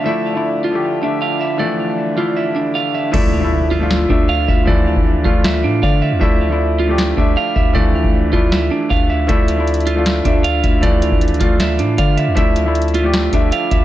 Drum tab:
CC |------------------------------------------------|------------------------------------------------|x-----------------------------------------------|------------------------------------------------|
HH |------------------------------------------------|------------------------------------------------|------------------------------------------------|------------------------------------------------|
SD |------------------------------------------------|------------------------------------------------|------------------------o-----------------------|------------------------o-----------------------|
BD |------------------------------------------------|------------------------------------------------|o-----------------------------o-----------o-----|o--------o--------o-----------------o-----------|

CC |------------------------------------------------|------------------------------------------------|------------------------------------------------|------------------------------------------------|
HH |------------------------------------------------|------------------------------------------------|x-----x-----x-x-x-x-----x-----x-----x-----x-----|x-----x-----x-x-x-x-----x-----x-----x-----x-----|
SD |------------------------o-----------------------|------------------------o-----------------------|------------------------o-----------------------|------------------------o-----------------------|
BD |o-----------------------------o-----------o-----|o--------o--------o-----------------o-----------|o-----------------------------o-----------o-----|o--------o--------o-----------------o-----------|

CC |------------------------------------------------|
HH |x-----x-----x-x-x-x-----x-----x-----x-----x-----|
SD |------------------------o-----------------------|
BD |o-----------------------------o-----------o-----|